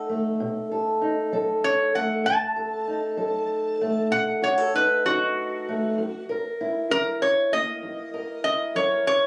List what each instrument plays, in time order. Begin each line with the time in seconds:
Already playing: steel-string acoustic guitar D#4 A4
0.09 steel-string acoustic guitar A3
0.40 steel-string acoustic guitar B2
0.72 steel-string acoustic guitar A4
1.02 steel-string acoustic guitar D#4
1.32 steel-string acoustic guitar F#3 A4
1.64 resonator guitar played with a steel bar C#5
1.95 steel-string acoustic guitar A3, resonator guitar played with a steel bar F#5
2.24 steel-string acoustic guitar B2, resonator guitar played with a steel bar A5
2.56 steel-string acoustic guitar A4
2.88 steel-string acoustic guitar D#4
3.17 steel-string acoustic guitar F#3 A4
3.81 steel-string acoustic guitar A3
4.10 steel-string acoustic guitar B2, resonator guitar played with a steel bar F#5
4.42 steel-string acoustic guitar F#4, resonator guitar played with a steel bar C#5
4.58 steel-string acoustic guitar A4
4.74 steel-string acoustic guitar D#4, resonator guitar played with a steel bar B4
5.05 steel-string acoustic guitar F#3 D#4, resonator guitar played with a steel bar F#4
5.69 steel-string acoustic guitar A3
5.98 steel-string acoustic guitar F#2
6.29 steel-string acoustic guitar A#4
6.61 steel-string acoustic guitar E4
6.90 steel-string acoustic guitar F#3 E4, resonator guitar played with a steel bar A#4
7.22 resonator guitar played with a steel bar C#5
7.52 steel-string acoustic guitar A#3, resonator guitar played with a steel bar D#5
7.82 steel-string acoustic guitar F#2
8.14 steel-string acoustic guitar A#4
8.44 steel-string acoustic guitar E4, resonator guitar played with a steel bar D#5
8.75 steel-string acoustic guitar F#3 A#4, resonator guitar played with a steel bar C#5
9.07 resonator guitar played with a steel bar C#5